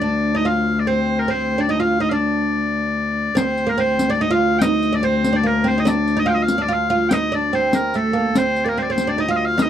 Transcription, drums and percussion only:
3.37 riq medium
3.58 riq soft
3.99 riq medium
4.62 riq medium
4.83 riq soft
5.24 riq medium
5.87 riq medium
6.08 riq soft
6.48 riq medium
7.11 riq medium
7.73 riq medium
7.94 riq soft
8.35 riq medium
8.56 riq soft
8.98 riq soft
9.59 riq medium

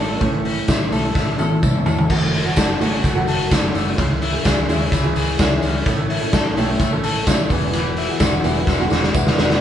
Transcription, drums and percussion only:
0.21 kick loud
0.21 closed hi-hat medium
0.45 open hi-hat medium
0.68 kick loud
0.68 snare loud
0.68 closed hi-hat medium
0.68 tambourine medium
0.92 open hi-hat medium
0.92 tambourine medium
1.15 kick loud
1.15 snare medium
1.15 tambourine medium
1.39 high tom medium
1.39 tambourine medium
1.63 kick loud
1.63 mid tom medium
1.63 tambourine medium
1.75 mid tom medium
1.86 floor tom loud
1.86 tambourine soft
1.99 floor tom medium
2.10 kick loud
2.10 crash loud
2.33 open hi-hat medium
2.56 kick loud
2.56 snare loud
2.56 hi-hat pedal medium
2.56 ride medium
2.56 tambourine loud
2.81 open hi-hat medium
2.81 tambourine medium
3.04 kick loud
3.04 hi-hat pedal medium
3.04 ride medium
3.04 tambourine medium
3.27 open hi-hat medium
3.27 tambourine medium
3.51 kick loud
3.51 snare loud
3.51 hi-hat pedal medium
3.51 ride medium
3.51 tambourine medium
3.75 open hi-hat medium
3.75 tambourine medium
3.98 kick loud
3.98 hi-hat pedal medium
3.98 ride medium
4.22 open hi-hat medium
4.45 kick loud
4.45 snare loud
4.45 hi-hat pedal medium
4.45 ride medium
4.45 tambourine medium
4.69 open hi-hat medium
4.69 tambourine medium
4.92 kick loud
4.92 hi-hat pedal medium
4.92 ride medium
4.92 tambourine medium
5.16 open hi-hat medium
5.16 tambourine medium
5.39 kick loud
5.39 snare loud
5.39 hi-hat pedal medium
5.39 ride medium
5.39 tambourine loud
5.62 open hi-hat medium
5.62 tambourine soft
5.86 kick loud
5.86 hi-hat pedal medium
5.86 ride medium
5.86 tambourine soft
6.10 open hi-hat medium
6.33 kick loud
6.33 snare loud
6.33 hi-hat pedal medium
6.33 ride medium
6.33 tambourine loud
6.57 open hi-hat medium
6.57 tambourine medium
6.80 kick loud
6.80 hi-hat pedal medium
6.80 ride medium
6.80 tambourine medium
7.04 open hi-hat medium
7.04 tambourine medium
7.27 kick loud
7.27 snare loud
7.27 hi-hat pedal medium
7.27 ride medium
7.27 tambourine loud
7.50 kick loud
7.50 open hi-hat medium
7.50 tambourine medium
7.73 hi-hat pedal medium
7.73 ride medium
7.73 tambourine soft
7.97 open hi-hat medium
8.20 kick loud
8.20 snare loud
8.20 hi-hat pedal medium
8.20 ride medium
8.20 tambourine loud
8.44 open hi-hat medium
8.44 tambourine medium
8.67 kick loud
8.67 snare medium
8.67 tambourine medium
8.90 snare medium
8.90 tambourine medium
9.03 snare medium
9.14 kick loud
9.14 tambourine medium
9.27 snare medium
9.38 snare loud
9.38 tambourine medium
9.50 snare loud

